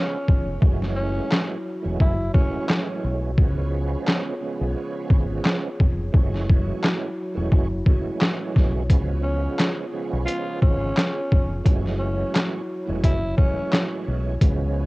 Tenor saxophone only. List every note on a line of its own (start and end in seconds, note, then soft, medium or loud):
0.00 0.58 C#4 loud
0.95 1.46 C#4 medium
2.01 2.32 E4 medium
2.33 2.84 C#4 medium
9.23 9.74 C#4 medium
10.26 10.58 F4 medium
10.62 11.62 C#4 loud
11.99 12.50 C#4 medium
13.04 13.35 E4 medium
13.37 13.88 C#4 medium